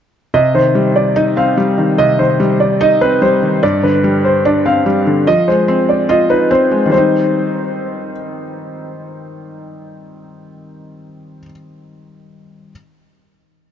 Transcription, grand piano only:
0.34 0.52 D#5 loud
0.55 0.93 C5 medium
0.96 1.14 D5 medium
1.16 1.35 D#5 medium
1.37 1.95 F5 medium
1.98 2.17 D#5 loud
2.19 2.58 C5 medium
2.60 2.79 D5 medium
2.81 2.99 D#5 medium
3.01 3.20 B4 medium
3.22 3.60 C5 medium
3.63 3.81 D5 loud
3.83 4.22 B4 medium
4.25 4.43 C5 medium
4.45 4.64 D5 medium
4.66 5.24 F5 medium
5.27 5.46 D#5 loud
5.48 5.86 C5 medium
5.89 6.07 D5 medium
6.09 6.28 D#5 medium
6.30 6.48 B4 medium
6.51 6.89 C5 medium
6.92 8.11 C5 medium

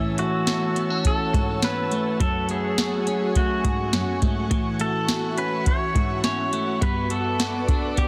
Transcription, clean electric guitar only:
0.00 2.20 E3 medium
0.00 0.75 C#4 medium
0.18 1.91 A3 medium
0.47 1.33 F#4 medium
0.76 0.90 B3 medium
0.90 1.61 C#4 soft
1.33 2.78 F#4 medium
1.62 3.07 C#4 medium
1.92 2.49 A3 medium
2.21 4.50 F#3 medium
2.49 3.36 A3 medium
2.79 3.63 G#4 medium
3.07 3.93 C#4 medium
3.36 4.22 A3 medium
3.65 4.57 G#4 medium
3.93 5.37 C#4 medium
4.22 4.79 A3 medium
4.51 6.82 E3 medium
4.80 5.66 A3 medium
5.09 5.95 F#4 medium
5.38 6.23 C#4 medium
5.95 7.39 F#4 medium
6.24 6.88 C#4 medium
6.53 6.81 A3 medium
6.81 7.09 B3 medium
7.10 7.96 B3 medium
7.39 8.08 F#4 medium
7.68 8.08 D4 medium
7.97 8.08 B3 medium

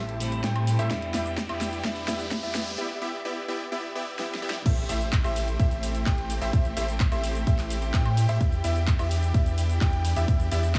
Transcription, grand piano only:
0.00 0.41 E5 loud
0.44 0.76 G5 loud
0.79 0.88 E5 loud
1.14 1.32 E5 loud
1.49 1.82 E5 loud
1.84 2.05 E5 loud
2.08 2.26 E5 loud
2.43 2.75 E5 loud
4.66 4.86 E5 loud
4.89 5.07 E5 loud
5.24 5.57 E5 loud
5.60 6.04 E5 loud
6.06 6.39 G5 loud
6.42 6.50 E5 loud
6.53 6.74 E5 loud
6.77 6.95 E5 loud
7.12 7.44 E5 loud
7.47 7.91 E5 loud
7.94 8.26 G5 loud
8.29 8.38 E5 loud
8.41 8.61 E5 loud
8.64 8.82 E5 loud
8.99 9.32 E5 loud
9.34 9.79 E5 loud
9.81 10.14 G5 loud
10.16 10.25 E5 loud
10.28 10.49 E5 loud
10.52 10.70 E5 loud

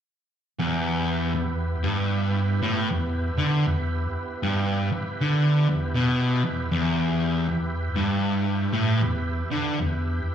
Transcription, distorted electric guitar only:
0.59 1.34 E2 medium
1.35 1.74 E2 medium
1.84 2.59 G2 medium
2.62 2.89 A2 medium
2.90 3.28 E2 medium
3.38 3.65 D3 medium
3.66 4.05 E2 medium
4.43 4.90 G2 medium
4.92 muted distorted electric guitar stroke medium
5.21 5.67 D3 loud
5.68 5.91 E2 medium
5.95 6.42 B2 medium
6.45 6.67 E2 medium
6.72 7.47 E2 medium
7.49 7.88 E2 medium
7.96 8.72 G2 medium
8.73 9.01 A2 loud
9.02 9.41 E2 medium
9.51 9.78 D3 medium
9.79 10.17 E2 medium

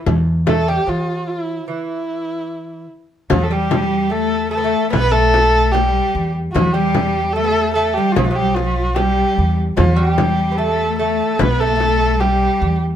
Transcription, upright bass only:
0.06 0.77 E2 medium
0.88 1.59 E3 medium
3.31 4.73 E2 medium
4.93 5.99 B1 medium
6.15 6.50 E2 medium
6.55 7.96 E2 medium
8.17 9.23 B1 medium
9.38 9.73 E2 medium
9.78 11.20 E2 medium
11.40 12.47 B1 medium
12.62 12.96 E2 medium

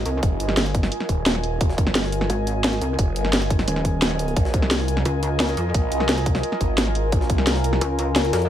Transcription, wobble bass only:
0.06 0.21 C2 loud
2.30 2.80 G#1 loud
2.81 2.97 C2 loud
3.68 4.16 D#1 loud
4.16 4.35 D1 loud
5.05 5.56 C#2 loud
5.57 5.73 F2 medium
7.81 8.32 C#2 loud
8.33 8.49 F2 loud

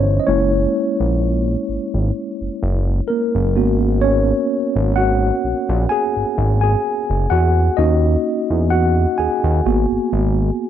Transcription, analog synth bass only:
0.00 0.19 G1 medium
0.28 0.66 F#1 loud
1.00 1.56 A#1 loud
1.69 1.79 G#1 soft
1.94 2.11 G#1 medium
2.41 2.50 F#1 soft
2.63 3.01 F#1 loud
3.35 3.58 F#1 medium
3.56 4.33 G#1 medium
4.76 5.31 G#1 medium
5.44 5.54 A#1 soft
5.69 5.87 A#1 medium
6.16 6.25 G#1 medium
6.38 6.76 G#1 medium
7.10 7.27 F#1 loud
7.31 7.69 E2 loud
7.78 8.16 D#2 loud
8.50 9.06 E2 medium
9.19 9.29 D#2 medium
9.44 9.61 D#2 loud
9.66 9.86 G#1 loud
9.91 10.00 G#1 soft
10.13 10.51 G#1 loud

